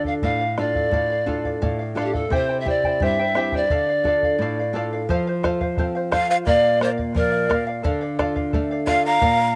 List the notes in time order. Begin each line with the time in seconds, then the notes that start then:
Already playing: D3 D4 F4 A4
0.05 D5 F5, bombo low
0.22 A2 A4 D5 F5, bombo low
0.40 D5 F5
0.58 D4 F4 A4 D5 F5, bombo rim
0.75 D5 F5, bombo low
0.91 A2 A4 D5 F5, bombo low
1.10 D5 F5
1.26 D4 F4 A4 D5 F5, bombo low
1.45 D5 F5, bombo low
1.62 A2 A4 D5 F5, bombo low
1.79 D5 F5
1.95 D4 F4 A4 D5 F5, bombo rim
2.00 G4 A4
2.13 A4 D5 F5, bombo low
2.30 C3 E4 G4 C5 E5 G5, bombo low
2.49 E4 C5 G5
2.60 E5
2.65 C4 E4 G4 C5 D5 E5 G5, bombo low
2.84 E4 C5 G5, bombo low
3.00 G2 E4 G4 C5 E5 G5, bombo low
3.19 E4 C5 G5
3.35 C4 E4 G4 C5 E5 G5, bombo rim
3.52 E4 C5 D5 G5, bombo low
3.70 D3 A4 D5 F5, bombo low
3.89 D5 F5
4.04 D4 F4 A4 D5, bombo low
4.08 F5
4.23 D5 F5, bombo low
4.39 A2 A4 D5 F5
4.59 D5 F5
4.73 D4 F4 A4 D5 F5
4.93 D5 F5
5.09 F3 A4 C5 F5, bombo low
5.27 C5 F5
5.43 F4 A4 C5 F5, bombo rim, bombo low
5.61 C5 F5, bombo low
5.77 C4 A4 C5 F5, bombo low
5.95 C5 F5
6.11 F4 A4 C5 F5, bombo rim, bombo low
6.29 C5 F5
6.47 A#2 A#4 D5 F5, bombo low
6.64 D5 F5
6.80 A#3 A#4 C5 D5 F5, bombo rim
6.98 D5 F5, bombo low
7.15 F3 A#4 D5 F5, bombo low
7.32 D5 F5
7.49 A#3 A#4 D5 F5, bombo rim, bombo low
7.67 D5 F5
7.83 D3 A4 D5 F5, bombo low
8.01 D5 F5
8.19 F4 A4 D5 F5, bombo rim, bombo low
8.36 D5 F5, bombo low
8.53 A3 A4 D5 F5, bombo low
8.71 D5 F5
8.87 F4 A4 D5 F5, bombo rim, bombo low
9.05 D5 F5 A#5
9.21 A#2 A#4 D5 F5, bombo low
9.37 D5 F5